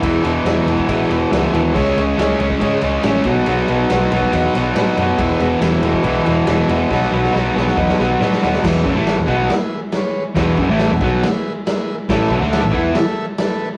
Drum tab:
CC |----------------|x---------------|----------------|----------------|
RD |x-x-x-x-x-x-x-x-|--x-x-x-x-x-x-x-|x-x-x-x-x-x-x-x-|x-x-x-x-x-x-x-x-|
SD |----o-------o---|----o-------o---|----o-------o---|----o-------o---|
BD |o------oo-------|o------oo-----o-|-------oo-------|o------oo-------|

CC |----------------|x---x---x---x---|x---x---x---x---|x---x---x---x---|
RD |----------------|----------------|----------------|----------------|
SD |oo-oo-oo-oo-oooo|o---o---o---o---|o---o---o---o---|o---o---o---o---|
BD |o-------o-------|o-o---o---------|o-o---o---------|o-o---o---------|